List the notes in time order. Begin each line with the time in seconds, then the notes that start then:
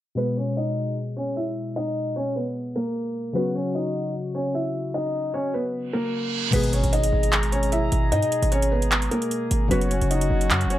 0.15 B2 G#3 B3 B4
0.37 C#4 C#5
0.57 D#4 D#5
1.17 C#4 C#5
1.36 E4 E5
1.76 D#4 D#5
2.16 C#4 C#5
2.36 B3 B4
2.76 A#3 A#4
3.33 C#3 F#3 B3 C#4 B4
3.38 F#4
3.55 C#4 C#5
3.75 D#4 D#5
4.35 C#4 C#5
4.55 E4 E5
4.94 D#4 D#5
5.34 C#4 C#5
5.54 B3 B4
5.74 reverse cymbal
5.93 A#3 A#4
6.51 G#1 B2 G#3 B3 G#4 B4 A#5, closed hi-hat, crash, impact
6.56 G#4
6.63 closed hi-hat
6.73 C#4 C#5, closed hi-hat
6.84 G#1, closed hi-hat
6.93 D#4 D#5, closed hi-hat
7.03 closed hi-hat
7.13 G#1
7.23 closed hi-hat
7.33 clap, closed hi-hat
7.43 closed hi-hat
7.52 C#4 C#5, closed hi-hat
7.63 closed hi-hat
7.72 E4 E5, closed hi-hat
7.92 G#1, closed hi-hat
8.12 G#2 D#4 D#5, closed hi-hat
8.22 closed hi-hat
8.32 closed hi-hat
8.42 G#1, closed hi-hat
8.52 C#4 C#5, closed hi-hat
8.62 closed hi-hat
8.72 B3 B4
8.82 closed hi-hat
8.92 clap, closed hi-hat
9.02 closed hi-hat
9.11 A#3 A#4, closed hi-hat
9.22 closed hi-hat
9.31 closed hi-hat
9.51 G#1, closed hi-hat
9.68 F#1 C#3 F#3 B3 C#4 F#4 B4, closed hi-hat
9.73 C#5
9.81 closed hi-hat
9.91 C#4 C#5, closed hi-hat
10.01 F#1, closed hi-hat
10.11 D#4 D#5, closed hi-hat
10.21 closed hi-hat
10.31 F#1
10.41 closed hi-hat
10.50 F#2, clap, closed hi-hat
10.61 closed hi-hat
10.66 F#1
10.70 C#4 C#5, closed hi-hat